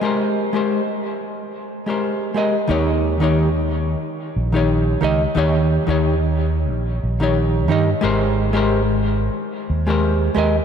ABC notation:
X:1
M:4/4
L:1/16
Q:"Swing 16ths" 1/4=90
K:Ebmix
V:1 name="Hollow-body jazz guitar"
[A,GBc]3 [A,GBc]2 z6 [A,GBc]3 [A,GBe] z | [E,EGd]3 [E,EGd]2 z6 [E,EGd]3 [E,EGe] z | [E,EGd]3 [E,EGd]2 z6 [E,EGd]3 [E,EGe] z | [A,GBc]3 [A,GBc]2 z6 [A,GBc]3 [A,GBe] z |]
V:2 name="Fingered electric bass" clef=bass
z16 | E,,6- E,, z3 B,,,3 z D,, z | E,,2 z E,,4- E,, B,,,2 B,,,4 G,, z | A,,,6- A,,, z3 E,,3 z E,, z |]